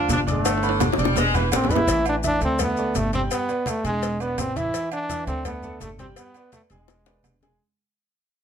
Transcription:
Already playing: F4 F5 F6
0.09 G1 F3, cowbell, high conga, low timbale, low agogo, maracas
0.13 D4
0.27 D4 D5 D6, cowbell, high conga, maracas
0.31 D3 A3
0.45 cowbell, high timbale, low agogo, maracas
0.57 high timbale
0.62 D3 B3 B4 B5, high conga, low agogo, maracas
0.69 high timbale
0.80 cowbell, high bongo, high conga, low timbale, low agogo, maracas
0.92 high bongo, high timbale
0.98 E1 G3 D4 D5 D6, cowbell, high conga, maracas
1.04 high bongo, low timbale
1.16 G#3, cowbell, high conga, low timbale, low agogo, maracas
1.34 E3 B3 B4 B5, low conga, low agogo, maracas
1.40 low timbale
1.52 A1 D3 C4, cowbell, low bongo, low timbale, low agogo, maracas
1.64 low bongo, low timbale
1.69 B3 B4 B5, cowbell, low conga, maracas
1.74 E4, low bongo, low timbale
1.87 A1 E3 E4 E5, cowbell, high conga, low agogo, maracas
2.05 D4, high conga, low agogo, maracas
2.23 E3 D4 E4 E5, cowbell, high conga, low timbale, maracas
2.41 D2 A3 C4 A4 D5, high conga, low agogo, maracas
2.59 A3 B3 A4 D5, cowbell, high conga, low conga, low agogo, maracas
2.77 A3 A4 D5, maracas
2.95 G1 A3, cowbell, high conga, low timbale, low agogo, maracas
3.13 G3 C4 G4 G5, cowbell, high conga, maracas
3.31 B3, cowbell, high conga, low agogo, maracas
3.49 B3 B4 D5, high conga, low agogo, maracas
3.66 A3, cowbell, high conga, low timbale, low agogo, maracas
3.84 E1 G#3 G#4 G#5, cowbell, high conga, maracas
4.02 cowbell, high conga, low agogo, maracas
4.20 B3 B4 D5, high conga, low agogo, maracas
4.38 A1 C4, cowbell, high conga, low timbale, low agogo, maracas
4.56 E3 E4 E5, cowbell, high conga, maracas
4.73 E3 E4 E5, cowbell, high conga, low agogo, maracas
4.91 D4, high conga, low agogo, maracas
5.09 E3 E4 E5, cowbell, high conga, low timbale, maracas
5.27 D2 A3 C4 A4 D5, high conga, low agogo, maracas
5.45 A3 B3 A4 D5, cowbell, high conga, low conga, low agogo, maracas
5.63 A3 A4 D5, high conga, low conga, maracas
5.80 G1 A3, cowbell, high conga, low timbale, low agogo, maracas
5.99 G3 C4 G4 G5, cowbell, high conga, maracas
6.16 B3, cowbell, high conga, low agogo, maracas
6.34 B3 B4 D5, high conga, low agogo, maracas
6.52 A3, cowbell, high conga, low timbale, low agogo, maracas
6.70 E1 G#3 G#4 G#5, cowbell, high conga, maracas
6.88 cowbell, high bongo, high conga, low agogo, maracas
7.05 B3 B4 D5, low bongo, high conga, low agogo, maracas
7.23 E1, cowbell, high conga, low timbale, low agogo, maracas
7.41 G#3 G#4 G#5, cowbell, low bongo, high conga, maracas

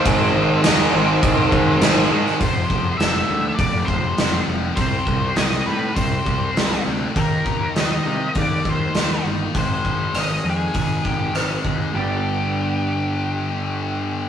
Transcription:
Already playing: C4
0.04 G#1 G#2 D#3 G#3, kick, crash
0.35 G#1
0.62 D#2 G#2 D#3 G#3 D#4, snare, crash
0.91 G#1 G#2 D#3 G#3 C4
1.22 C2 G#2 D#3 G#3, kick, crash
1.52 D#2, kick
1.80 G#1 G#2 D#3 G#3, snare, crash
2.10 G#2 D#3 G#3
2.27 snare
2.40 F1 F2 C3 F3 C5, kick, open hi-hat
2.70 F1, kick
2.97 F1 F2 C3 F3 E5, snare, open hi-hat
3.28 D2 F2 C3 F3 A3
3.55 F1 F2 C3 D5, kick, open hi-hat
3.60 F3
3.85 F1 A3 C5, kick
4.17 F1 F2 C3 F3 C4, snare, open hi-hat
4.48 F1 F2 C3 F3
4.76 C2 C3 G3 C4 C5, kick, open hi-hat
5.07 C2, kick
5.36 C2 C3 G3 C4 D#5, snare, open hi-hat
5.52 snare
5.66 A2 C3 G3 C4 B4
5.96 C2 C3 G3 C4 C5, kick, open hi-hat
6.25 C2 G3, kick
6.57 C2 C3 G3 C4, snare, open hi-hat
6.73 snare
6.86 D2 C3 G3 C4
7.15 D#2 D#3 A#3 D#4 A#4, kick, open hi-hat
7.46 D#2, kick
7.76 D#2 D#3 A#3 D#4 D#5, snare, open hi-hat
8.05 C3 D#3 G3 A#3 D#4
8.35 D#2 D#3 A#3 D#4 D5, kick, open hi-hat
8.64 D#2 G3, kick
8.69 C5
8.95 D#2 D#3 A#3 D#4, snare, open hi-hat
9.24 G1 D#3 A#3 D#4
9.55 G#1 G#2 D#3 G#3 C5, kick, open hi-hat
9.85 G#1, kick
10.14 G#1 G#2 D#3 G#3, cross-stick, open hi-hat
10.20 D#5
10.44 F2 G#2 D#3 G#3
10.50 G#4
10.74 G#1 G#2 D#3 G#3, kick, open hi-hat
11.05 G#1 G#3 G4, kick
11.32 G#1 G#2 D#3 G#3 C4, cross-stick, open hi-hat
11.64 D#2 G#2 D#3 G#3, kick
11.93 G1 G2 D3 G4
11.97 G3 B3 D4

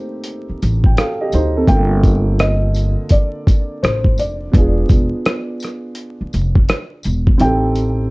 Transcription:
Already playing: A3 A#3 C4 D#4 G4 C5
0.24 closed hi-hat
0.49 muted upright bass stroke
0.62 A1, closed hi-hat, tambourine
0.84 G5, kick
0.97 A4 F5, cross-stick, closed hi-hat
1.21 G4 D#5
1.32 D2 D#4 C5, closed hi-hat, tambourine
1.57 C4 A4
1.67 G1 D3 A#3 G5, kick, closed hi-hat
1.71 F4 A4
2.03 kick, closed hi-hat, tambourine
2.39 D#5, cross-stick, closed hi-hat
2.74 closed hi-hat, tambourine
3.09 D5, kick, closed hi-hat
3.47 kick, closed hi-hat, tambourine
3.83 A1 C5, cross-stick, closed hi-hat
4.04 kick
4.18 F1 D5, closed hi-hat, tambourine
4.52 E1 B3 D4, kick, closed hi-hat
4.57 F4 G#4
4.89 E1, kick, closed hi-hat, tambourine
5.26 cross-stick, closed hi-hat
5.60 closed hi-hat, tambourine
5.65 cross-stick
5.95 closed hi-hat
6.21 muted upright bass stroke
6.33 F1, closed hi-hat, tambourine
6.55 kick
6.69 cross-stick, closed hi-hat
7.03 E1, closed hi-hat, tambourine
7.27 kick
7.38 A1 C4 D#4 G5, closed hi-hat
7.42 G4 A4
7.75 closed hi-hat, tambourine

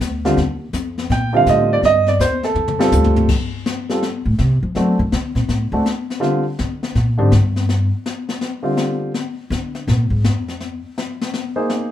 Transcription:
0.00 D2, kick, snare, hi-hat pedal
0.25 D3 G3 C4 F4, snare
0.37 D#2, brush sweep, kick, snare
0.73 F2, kick, snare, hi-hat pedal
0.98 snare
1.10 A#2 G5, brush sweep, kick, snare
1.33 D3 G3 C4 F4 F5
1.46 A2 D#5, kick, snare, hi-hat pedal
1.73 D5
1.82 G2 D5 D#5, brush sweep, kick, snare
2.07 D5, snare
2.19 D#2 C5, kick, snare, hi-hat pedal
2.43 A4, snare
2.55 F2, mid tom
2.68 mid tom
2.79 G3 C4 F4 A4, snare
2.92 D2, floor tom, hi-hat pedal
3.04 floor tom
3.16 floor tom
3.29 brush sweep, kick, snare, crash
3.66 snare
3.89 G3 C4 F4 A4, snare
4.02 brush sweep, snare
4.25 A2
4.39 C3, snare
4.63 F3
4.75 F#3 A3 C4 D4 F#4, brush sweep, snare
4.99 D#3
5.12 D3, snare
5.35 A#2, snare
5.48 A2, brush sweep, snare
5.72 D2 A3 C4 D4 F#4
5.86 snare
6.10 snare
6.20 D3 G3 C4 F4, brush sweep, snare
6.59 D3, snare
6.83 snare
6.95 A#2, brush sweep, snare
7.17 G#2 D3 G3 C4 D4
7.32 G2, snare
7.56 snare
7.69 brush sweep, snare
8.06 snare
8.29 snare
8.41 brush sweep, snare
8.63 D3 G3 C4 F4
8.77 snare
9.14 brush sweep, snare
9.50 D3, snare
9.75 snare
9.87 A#2, brush sweep, snare
10.10 G#2
10.24 F2, snare
10.48 snare
10.60 brush sweep, snare
10.98 snare
11.21 snare
11.34 brush sweep, snare
11.56 A#3 D#4 G#4 C5
11.70 snare

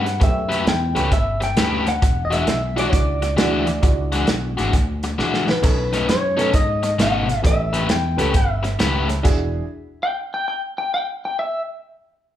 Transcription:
Already playing: G2 F#5
0.06 muted overdriven electric guitar stroke, snare, closed hi-hat
0.20 F#2 A3 B3 C#4 G4 E5, muted overdriven electric guitar stroke, kick, snare, closed hi-hat
0.49 A3 C#4 G4 B4, snare, closed hi-hat
0.65 E2 G5, muted overdriven electric guitar stroke, snare, closed hi-hat
0.95 C#2 A3 B3 C#4 G4 B4, snare, closed hi-hat
1.11 G1 E5, muted overdriven electric guitar stroke, kick, snare, closed hi-hat
1.41 G5, muted overdriven electric guitar stroke, snare, closed hi-hat
1.56 D2 A3 C#4 G4 B4, snare, closed hi-hat
1.86 F#5, muted overdriven electric guitar stroke, snare, closed hi-hat
2.02 E1, muted overdriven electric guitar stroke, kick, snare, closed hi-hat
2.25 D#5
2.31 E3 G#3 D4 F#4 E5, snare, closed hi-hat
2.47 B1, muted overdriven electric guitar stroke, snare, closed hi-hat
2.76 E3 G#3 D4 E4 F#4 D5, snare, closed hi-hat
2.90 C#2 C#5 D5, muted overdriven electric guitar stroke, kick, snare, closed hi-hat
3.22 muted overdriven electric guitar stroke, snare, closed hi-hat
3.36 D2 E3 G#3 D4 E4 F#4, snare, closed hi-hat
3.66 muted overdriven electric guitar stroke, snare, closed hi-hat
3.81 C#2 G#3 D4 E4 F#4, muted overdriven electric guitar stroke, kick, snare, closed hi-hat
4.12 E3 G#3 D4 F#4, snare, closed hi-hat
4.27 B1, muted overdriven electric guitar stroke, snare, closed hi-hat
4.57 G#1 E3 G#3 D4 F#4, snare, closed hi-hat
4.73 D2, muted overdriven electric guitar stroke, kick, snare, closed hi-hat
5.03 muted overdriven electric guitar stroke, snare, closed hi-hat
5.18 A#1 E3 G#3 D4 F#4, snare
5.34 snare
5.48 B4, muted overdriven electric guitar stroke, snare
5.62 B1 B3 C#4 D#4 A4, muted overdriven electric guitar stroke, kick, snare, closed hi-hat, splash
5.93 B2 A3 C#4 D#4, snare, closed hi-hat
6.08 F#2 C#5, muted overdriven electric guitar stroke, snare, closed hi-hat
6.37 B2 A3 B3 C#4 D#4 A4, snare, closed hi-hat
6.53 G#2 D#5, muted overdriven electric guitar stroke, kick, snare, closed hi-hat
6.83 muted overdriven electric guitar stroke, snare, closed hi-hat
6.98 G#1 B2 A3 C#4 D#4 F#5, snare, closed hi-hat
7.27 muted overdriven electric guitar stroke, snare, closed hi-hat
7.42 A1 B3 C#4 G4 A4, muted overdriven electric guitar stroke, kick, snare, closed hi-hat
7.47 E5
7.73 A3 C#4 G4 B4, snare, closed hi-hat
7.89 E2 G5, muted overdriven electric guitar stroke, snare, closed hi-hat
8.17 C#2 A3 B3 C#4 G4 A4 B4, snare, closed hi-hat
8.34 G1 E5, muted overdriven electric guitar stroke, kick, snare, closed hi-hat
8.63 muted overdriven electric guitar stroke, snare, closed hi-hat
8.79 C#2 A3 C#4 G4 B4, snare, closed hi-hat
9.09 muted overdriven electric guitar stroke, snare, closed hi-hat
9.23 E1 D4 E4 F#4 G#4, muted overdriven electric guitar stroke, kick, snare, closed hi-hat, crash
10.03 G5
10.34 G5
10.48 G5
10.78 G5
10.94 G5
11.25 G5
11.39 E5

